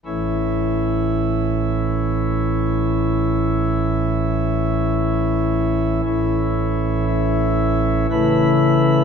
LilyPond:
<<
  \new Staff \with { instrumentName = "Pipe organ" } { \time 3/4 \key a \major \tempo 4 = 60 r2. | r2. | r4 e'4 b'4 | }
  \new Staff \with { instrumentName = "Pipe organ" } { \clef bass \time 3/4 \key a \major <a,, a, e cis' e'>2.~ | <a,, a, e cis' e'>2. | <a,, a, e cis' e'>2 <cis e a e'>4 | }
>>